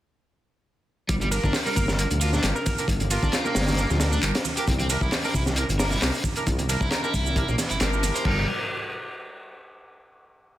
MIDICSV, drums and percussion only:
0, 0, Header, 1, 2, 480
1, 0, Start_track
1, 0, Key_signature, -2, "minor"
1, 0, Tempo, 447761
1, 1174, Time_signature, 4, 2, 24, 8
1, 11342, End_track
2, 0, Start_track
2, 0, Title_t, "Drums"
2, 1167, Note_on_c, 9, 42, 86
2, 1170, Note_on_c, 9, 36, 114
2, 1173, Note_on_c, 9, 82, 43
2, 1274, Note_off_c, 9, 42, 0
2, 1277, Note_off_c, 9, 36, 0
2, 1281, Note_off_c, 9, 82, 0
2, 1300, Note_on_c, 9, 42, 42
2, 1302, Note_on_c, 9, 63, 93
2, 1304, Note_on_c, 9, 82, 22
2, 1407, Note_off_c, 9, 42, 0
2, 1410, Note_off_c, 9, 63, 0
2, 1410, Note_on_c, 9, 42, 66
2, 1411, Note_off_c, 9, 82, 0
2, 1415, Note_on_c, 9, 51, 87
2, 1415, Note_on_c, 9, 82, 81
2, 1518, Note_off_c, 9, 42, 0
2, 1522, Note_off_c, 9, 51, 0
2, 1522, Note_off_c, 9, 82, 0
2, 1540, Note_on_c, 9, 36, 90
2, 1543, Note_on_c, 9, 82, 33
2, 1642, Note_on_c, 9, 38, 123
2, 1643, Note_on_c, 9, 46, 82
2, 1648, Note_off_c, 9, 36, 0
2, 1650, Note_off_c, 9, 82, 0
2, 1651, Note_on_c, 9, 63, 68
2, 1655, Note_on_c, 9, 39, 103
2, 1655, Note_on_c, 9, 82, 44
2, 1749, Note_off_c, 9, 38, 0
2, 1750, Note_off_c, 9, 46, 0
2, 1758, Note_off_c, 9, 63, 0
2, 1762, Note_off_c, 9, 39, 0
2, 1762, Note_off_c, 9, 82, 0
2, 1784, Note_on_c, 9, 82, 21
2, 1888, Note_on_c, 9, 42, 66
2, 1891, Note_off_c, 9, 82, 0
2, 1894, Note_on_c, 9, 36, 94
2, 1896, Note_on_c, 9, 51, 87
2, 1896, Note_on_c, 9, 82, 74
2, 1995, Note_off_c, 9, 42, 0
2, 2001, Note_off_c, 9, 36, 0
2, 2003, Note_off_c, 9, 51, 0
2, 2003, Note_off_c, 9, 82, 0
2, 2017, Note_on_c, 9, 38, 57
2, 2022, Note_on_c, 9, 63, 95
2, 2024, Note_on_c, 9, 82, 33
2, 2124, Note_off_c, 9, 38, 0
2, 2129, Note_on_c, 9, 42, 86
2, 2130, Note_off_c, 9, 63, 0
2, 2131, Note_off_c, 9, 82, 0
2, 2134, Note_on_c, 9, 82, 44
2, 2236, Note_off_c, 9, 42, 0
2, 2242, Note_off_c, 9, 82, 0
2, 2257, Note_on_c, 9, 42, 42
2, 2261, Note_on_c, 9, 82, 22
2, 2267, Note_on_c, 9, 64, 79
2, 2365, Note_off_c, 9, 42, 0
2, 2368, Note_off_c, 9, 82, 0
2, 2369, Note_on_c, 9, 42, 64
2, 2371, Note_on_c, 9, 63, 68
2, 2373, Note_on_c, 9, 51, 88
2, 2373, Note_on_c, 9, 82, 78
2, 2374, Note_off_c, 9, 64, 0
2, 2476, Note_off_c, 9, 42, 0
2, 2479, Note_off_c, 9, 63, 0
2, 2480, Note_off_c, 9, 51, 0
2, 2480, Note_off_c, 9, 82, 0
2, 2497, Note_on_c, 9, 38, 39
2, 2502, Note_on_c, 9, 64, 81
2, 2502, Note_on_c, 9, 82, 34
2, 2604, Note_off_c, 9, 38, 0
2, 2605, Note_on_c, 9, 42, 93
2, 2609, Note_off_c, 9, 64, 0
2, 2609, Note_off_c, 9, 82, 0
2, 2612, Note_on_c, 9, 38, 111
2, 2614, Note_on_c, 9, 39, 106
2, 2614, Note_on_c, 9, 82, 46
2, 2712, Note_off_c, 9, 42, 0
2, 2719, Note_off_c, 9, 38, 0
2, 2721, Note_off_c, 9, 39, 0
2, 2721, Note_off_c, 9, 82, 0
2, 2742, Note_on_c, 9, 82, 22
2, 2850, Note_off_c, 9, 82, 0
2, 2851, Note_on_c, 9, 42, 74
2, 2856, Note_on_c, 9, 51, 88
2, 2856, Note_on_c, 9, 82, 76
2, 2857, Note_on_c, 9, 36, 102
2, 2857, Note_on_c, 9, 63, 96
2, 2958, Note_off_c, 9, 42, 0
2, 2963, Note_off_c, 9, 51, 0
2, 2963, Note_off_c, 9, 82, 0
2, 2964, Note_off_c, 9, 36, 0
2, 2964, Note_off_c, 9, 63, 0
2, 2982, Note_on_c, 9, 82, 32
2, 2986, Note_on_c, 9, 42, 42
2, 3086, Note_on_c, 9, 36, 103
2, 3089, Note_off_c, 9, 82, 0
2, 3093, Note_off_c, 9, 42, 0
2, 3093, Note_on_c, 9, 42, 85
2, 3096, Note_on_c, 9, 82, 43
2, 3193, Note_off_c, 9, 36, 0
2, 3200, Note_off_c, 9, 42, 0
2, 3203, Note_off_c, 9, 82, 0
2, 3216, Note_on_c, 9, 42, 41
2, 3220, Note_on_c, 9, 63, 95
2, 3222, Note_on_c, 9, 82, 21
2, 3323, Note_off_c, 9, 42, 0
2, 3326, Note_on_c, 9, 42, 67
2, 3327, Note_off_c, 9, 63, 0
2, 3329, Note_off_c, 9, 82, 0
2, 3332, Note_on_c, 9, 51, 87
2, 3332, Note_on_c, 9, 82, 79
2, 3433, Note_off_c, 9, 42, 0
2, 3440, Note_off_c, 9, 51, 0
2, 3440, Note_off_c, 9, 82, 0
2, 3459, Note_on_c, 9, 36, 94
2, 3462, Note_on_c, 9, 82, 34
2, 3566, Note_off_c, 9, 36, 0
2, 3568, Note_on_c, 9, 42, 90
2, 3569, Note_off_c, 9, 82, 0
2, 3570, Note_on_c, 9, 38, 119
2, 3570, Note_on_c, 9, 63, 65
2, 3573, Note_on_c, 9, 39, 108
2, 3573, Note_on_c, 9, 82, 44
2, 3675, Note_off_c, 9, 42, 0
2, 3677, Note_off_c, 9, 38, 0
2, 3677, Note_off_c, 9, 63, 0
2, 3680, Note_off_c, 9, 39, 0
2, 3680, Note_off_c, 9, 82, 0
2, 3702, Note_on_c, 9, 82, 22
2, 3805, Note_on_c, 9, 38, 93
2, 3808, Note_on_c, 9, 46, 64
2, 3809, Note_off_c, 9, 82, 0
2, 3815, Note_on_c, 9, 51, 84
2, 3815, Note_on_c, 9, 82, 76
2, 3872, Note_off_c, 9, 46, 0
2, 3872, Note_on_c, 9, 46, 64
2, 3875, Note_off_c, 9, 38, 0
2, 3875, Note_on_c, 9, 38, 89
2, 3922, Note_off_c, 9, 51, 0
2, 3922, Note_off_c, 9, 82, 0
2, 3941, Note_off_c, 9, 46, 0
2, 3941, Note_on_c, 9, 46, 65
2, 3943, Note_off_c, 9, 38, 0
2, 3943, Note_on_c, 9, 38, 94
2, 3943, Note_on_c, 9, 82, 34
2, 3947, Note_on_c, 9, 63, 94
2, 3988, Note_off_c, 9, 46, 0
2, 3988, Note_on_c, 9, 46, 63
2, 3997, Note_off_c, 9, 38, 0
2, 3997, Note_on_c, 9, 38, 91
2, 4048, Note_on_c, 9, 42, 60
2, 4050, Note_off_c, 9, 82, 0
2, 4054, Note_off_c, 9, 63, 0
2, 4055, Note_on_c, 9, 82, 45
2, 4095, Note_off_c, 9, 46, 0
2, 4105, Note_off_c, 9, 38, 0
2, 4155, Note_off_c, 9, 42, 0
2, 4163, Note_off_c, 9, 82, 0
2, 4183, Note_on_c, 9, 64, 91
2, 4183, Note_on_c, 9, 82, 22
2, 4188, Note_on_c, 9, 38, 37
2, 4286, Note_off_c, 9, 38, 0
2, 4286, Note_on_c, 9, 38, 112
2, 4290, Note_off_c, 9, 64, 0
2, 4291, Note_off_c, 9, 82, 0
2, 4293, Note_on_c, 9, 63, 64
2, 4294, Note_on_c, 9, 51, 87
2, 4294, Note_on_c, 9, 82, 81
2, 4298, Note_on_c, 9, 42, 81
2, 4393, Note_off_c, 9, 38, 0
2, 4400, Note_off_c, 9, 63, 0
2, 4401, Note_off_c, 9, 51, 0
2, 4401, Note_off_c, 9, 82, 0
2, 4405, Note_off_c, 9, 42, 0
2, 4414, Note_on_c, 9, 64, 77
2, 4422, Note_on_c, 9, 82, 35
2, 4521, Note_off_c, 9, 64, 0
2, 4529, Note_off_c, 9, 82, 0
2, 4531, Note_on_c, 9, 42, 59
2, 4533, Note_on_c, 9, 39, 114
2, 4533, Note_on_c, 9, 82, 44
2, 4639, Note_off_c, 9, 42, 0
2, 4640, Note_off_c, 9, 39, 0
2, 4640, Note_off_c, 9, 82, 0
2, 4660, Note_on_c, 9, 82, 23
2, 4661, Note_on_c, 9, 42, 86
2, 4666, Note_on_c, 9, 38, 98
2, 4767, Note_off_c, 9, 82, 0
2, 4768, Note_off_c, 9, 42, 0
2, 4769, Note_on_c, 9, 63, 89
2, 4770, Note_on_c, 9, 51, 84
2, 4770, Note_on_c, 9, 82, 76
2, 4773, Note_off_c, 9, 38, 0
2, 4876, Note_off_c, 9, 63, 0
2, 4877, Note_off_c, 9, 51, 0
2, 4877, Note_off_c, 9, 82, 0
2, 4897, Note_on_c, 9, 42, 58
2, 4900, Note_on_c, 9, 82, 31
2, 5004, Note_off_c, 9, 42, 0
2, 5007, Note_off_c, 9, 82, 0
2, 5012, Note_on_c, 9, 82, 41
2, 5013, Note_on_c, 9, 36, 100
2, 5019, Note_on_c, 9, 42, 89
2, 5119, Note_off_c, 9, 82, 0
2, 5120, Note_off_c, 9, 36, 0
2, 5126, Note_off_c, 9, 42, 0
2, 5140, Note_on_c, 9, 42, 47
2, 5140, Note_on_c, 9, 82, 21
2, 5142, Note_on_c, 9, 63, 89
2, 5247, Note_off_c, 9, 42, 0
2, 5247, Note_off_c, 9, 82, 0
2, 5248, Note_on_c, 9, 42, 65
2, 5249, Note_off_c, 9, 63, 0
2, 5251, Note_on_c, 9, 51, 85
2, 5251, Note_on_c, 9, 82, 77
2, 5355, Note_off_c, 9, 42, 0
2, 5358, Note_off_c, 9, 51, 0
2, 5358, Note_off_c, 9, 82, 0
2, 5374, Note_on_c, 9, 36, 99
2, 5381, Note_on_c, 9, 82, 32
2, 5481, Note_off_c, 9, 36, 0
2, 5488, Note_off_c, 9, 82, 0
2, 5489, Note_on_c, 9, 38, 115
2, 5491, Note_on_c, 9, 46, 84
2, 5493, Note_on_c, 9, 39, 109
2, 5493, Note_on_c, 9, 82, 43
2, 5494, Note_on_c, 9, 63, 69
2, 5596, Note_off_c, 9, 38, 0
2, 5598, Note_off_c, 9, 46, 0
2, 5600, Note_off_c, 9, 39, 0
2, 5600, Note_off_c, 9, 82, 0
2, 5601, Note_off_c, 9, 63, 0
2, 5622, Note_on_c, 9, 82, 21
2, 5728, Note_on_c, 9, 36, 93
2, 5729, Note_off_c, 9, 82, 0
2, 5733, Note_on_c, 9, 51, 83
2, 5733, Note_on_c, 9, 82, 74
2, 5736, Note_on_c, 9, 42, 67
2, 5835, Note_off_c, 9, 36, 0
2, 5840, Note_off_c, 9, 51, 0
2, 5840, Note_off_c, 9, 82, 0
2, 5844, Note_off_c, 9, 42, 0
2, 5856, Note_on_c, 9, 38, 54
2, 5863, Note_on_c, 9, 82, 34
2, 5866, Note_on_c, 9, 63, 91
2, 5960, Note_on_c, 9, 42, 89
2, 5964, Note_off_c, 9, 38, 0
2, 5970, Note_off_c, 9, 82, 0
2, 5973, Note_off_c, 9, 63, 0
2, 5974, Note_on_c, 9, 82, 43
2, 6067, Note_off_c, 9, 42, 0
2, 6081, Note_off_c, 9, 82, 0
2, 6101, Note_on_c, 9, 64, 80
2, 6102, Note_on_c, 9, 82, 22
2, 6107, Note_on_c, 9, 42, 45
2, 6208, Note_off_c, 9, 64, 0
2, 6209, Note_off_c, 9, 82, 0
2, 6209, Note_on_c, 9, 63, 71
2, 6212, Note_on_c, 9, 38, 116
2, 6214, Note_off_c, 9, 42, 0
2, 6214, Note_on_c, 9, 46, 79
2, 6216, Note_on_c, 9, 51, 84
2, 6216, Note_on_c, 9, 82, 82
2, 6316, Note_off_c, 9, 63, 0
2, 6319, Note_off_c, 9, 38, 0
2, 6321, Note_off_c, 9, 46, 0
2, 6323, Note_off_c, 9, 51, 0
2, 6323, Note_off_c, 9, 82, 0
2, 6335, Note_on_c, 9, 64, 77
2, 6337, Note_on_c, 9, 38, 39
2, 6344, Note_on_c, 9, 82, 34
2, 6443, Note_off_c, 9, 64, 0
2, 6444, Note_off_c, 9, 38, 0
2, 6448, Note_on_c, 9, 46, 75
2, 6452, Note_off_c, 9, 82, 0
2, 6454, Note_on_c, 9, 38, 104
2, 6455, Note_on_c, 9, 39, 112
2, 6455, Note_on_c, 9, 82, 45
2, 6555, Note_off_c, 9, 46, 0
2, 6561, Note_off_c, 9, 38, 0
2, 6563, Note_off_c, 9, 39, 0
2, 6563, Note_off_c, 9, 82, 0
2, 6585, Note_on_c, 9, 82, 22
2, 6688, Note_on_c, 9, 36, 97
2, 6689, Note_on_c, 9, 42, 75
2, 6692, Note_off_c, 9, 82, 0
2, 6695, Note_on_c, 9, 51, 84
2, 6695, Note_on_c, 9, 63, 109
2, 6695, Note_on_c, 9, 82, 75
2, 6795, Note_off_c, 9, 36, 0
2, 6796, Note_off_c, 9, 42, 0
2, 6802, Note_off_c, 9, 51, 0
2, 6802, Note_off_c, 9, 63, 0
2, 6802, Note_off_c, 9, 82, 0
2, 6814, Note_on_c, 9, 42, 49
2, 6823, Note_on_c, 9, 82, 31
2, 6921, Note_off_c, 9, 42, 0
2, 6930, Note_off_c, 9, 82, 0
2, 6931, Note_on_c, 9, 42, 81
2, 6935, Note_on_c, 9, 36, 112
2, 6937, Note_on_c, 9, 82, 41
2, 7038, Note_off_c, 9, 42, 0
2, 7042, Note_off_c, 9, 36, 0
2, 7044, Note_off_c, 9, 82, 0
2, 7060, Note_on_c, 9, 42, 45
2, 7064, Note_on_c, 9, 82, 21
2, 7065, Note_on_c, 9, 63, 90
2, 7167, Note_off_c, 9, 42, 0
2, 7171, Note_off_c, 9, 82, 0
2, 7173, Note_off_c, 9, 63, 0
2, 7176, Note_on_c, 9, 42, 75
2, 7176, Note_on_c, 9, 51, 85
2, 7176, Note_on_c, 9, 82, 75
2, 7283, Note_off_c, 9, 42, 0
2, 7283, Note_off_c, 9, 51, 0
2, 7283, Note_off_c, 9, 82, 0
2, 7299, Note_on_c, 9, 36, 95
2, 7305, Note_on_c, 9, 82, 31
2, 7404, Note_on_c, 9, 63, 67
2, 7406, Note_off_c, 9, 36, 0
2, 7408, Note_on_c, 9, 38, 126
2, 7412, Note_off_c, 9, 82, 0
2, 7412, Note_on_c, 9, 42, 92
2, 7417, Note_on_c, 9, 39, 112
2, 7417, Note_on_c, 9, 82, 41
2, 7511, Note_off_c, 9, 63, 0
2, 7515, Note_off_c, 9, 38, 0
2, 7519, Note_off_c, 9, 42, 0
2, 7525, Note_off_c, 9, 39, 0
2, 7525, Note_off_c, 9, 82, 0
2, 7545, Note_on_c, 9, 82, 22
2, 7653, Note_off_c, 9, 82, 0
2, 7654, Note_on_c, 9, 36, 95
2, 7657, Note_on_c, 9, 51, 81
2, 7657, Note_on_c, 9, 82, 70
2, 7658, Note_on_c, 9, 42, 69
2, 7761, Note_off_c, 9, 36, 0
2, 7764, Note_off_c, 9, 51, 0
2, 7764, Note_off_c, 9, 82, 0
2, 7765, Note_off_c, 9, 42, 0
2, 7780, Note_on_c, 9, 63, 102
2, 7785, Note_on_c, 9, 82, 32
2, 7887, Note_off_c, 9, 63, 0
2, 7890, Note_on_c, 9, 36, 106
2, 7890, Note_on_c, 9, 42, 96
2, 7892, Note_off_c, 9, 82, 0
2, 7897, Note_on_c, 9, 82, 42
2, 7997, Note_off_c, 9, 36, 0
2, 7998, Note_off_c, 9, 42, 0
2, 8005, Note_off_c, 9, 82, 0
2, 8014, Note_on_c, 9, 64, 85
2, 8023, Note_on_c, 9, 82, 21
2, 8122, Note_off_c, 9, 64, 0
2, 8127, Note_on_c, 9, 42, 69
2, 8129, Note_on_c, 9, 38, 49
2, 8131, Note_off_c, 9, 82, 0
2, 8135, Note_on_c, 9, 51, 84
2, 8135, Note_on_c, 9, 63, 68
2, 8135, Note_on_c, 9, 82, 77
2, 8234, Note_off_c, 9, 42, 0
2, 8236, Note_off_c, 9, 38, 0
2, 8242, Note_off_c, 9, 63, 0
2, 8243, Note_off_c, 9, 51, 0
2, 8243, Note_off_c, 9, 82, 0
2, 8247, Note_on_c, 9, 42, 43
2, 8258, Note_on_c, 9, 64, 75
2, 8262, Note_on_c, 9, 82, 33
2, 8354, Note_off_c, 9, 42, 0
2, 8362, Note_on_c, 9, 42, 95
2, 8366, Note_off_c, 9, 64, 0
2, 8370, Note_off_c, 9, 82, 0
2, 8370, Note_on_c, 9, 38, 113
2, 8375, Note_on_c, 9, 39, 110
2, 8375, Note_on_c, 9, 82, 44
2, 8469, Note_off_c, 9, 42, 0
2, 8477, Note_off_c, 9, 38, 0
2, 8482, Note_off_c, 9, 39, 0
2, 8482, Note_off_c, 9, 82, 0
2, 8502, Note_on_c, 9, 82, 22
2, 8608, Note_on_c, 9, 42, 67
2, 8608, Note_on_c, 9, 63, 88
2, 8609, Note_off_c, 9, 82, 0
2, 8615, Note_on_c, 9, 51, 79
2, 8615, Note_on_c, 9, 82, 70
2, 8715, Note_off_c, 9, 42, 0
2, 8716, Note_off_c, 9, 63, 0
2, 8722, Note_off_c, 9, 51, 0
2, 8722, Note_off_c, 9, 82, 0
2, 8741, Note_on_c, 9, 42, 48
2, 8742, Note_on_c, 9, 82, 30
2, 8846, Note_on_c, 9, 36, 104
2, 8846, Note_on_c, 9, 49, 91
2, 8849, Note_off_c, 9, 42, 0
2, 8849, Note_off_c, 9, 82, 0
2, 8953, Note_off_c, 9, 36, 0
2, 8953, Note_off_c, 9, 49, 0
2, 11342, End_track
0, 0, End_of_file